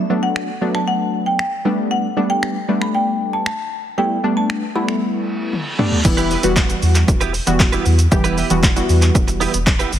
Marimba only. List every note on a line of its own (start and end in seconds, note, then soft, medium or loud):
0.00 0.24 E5 medium
0.23 0.76 F#5 medium
0.75 0.87 A5 medium
0.88 1.28 F#5 medium
1.26 1.38 G5 medium
1.39 1.93 G5 medium
1.91 2.31 F#5 medium
2.30 2.78 G5 medium
2.82 2.94 B5 medium
2.95 3.34 G5 medium
3.33 3.45 A5 medium
3.46 4.00 A5 medium
3.98 4.38 G5 medium
4.37 4.77 A5 medium
4.76 5.75 B5 medium